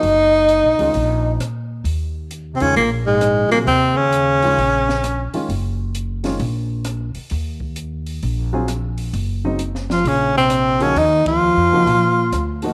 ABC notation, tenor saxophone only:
X:1
M:4/4
L:1/16
Q:"Swing" 1/4=132
K:Ebdor
V:1 name="Tenor saxophone"
E12 z4 | z4 z3/2 C/2 D2 B,2 A,4 B,2 | C2 D12 z2 | z16 |
z16 | z6 F2 D2 C4 D2 | E2 F12 z2 |]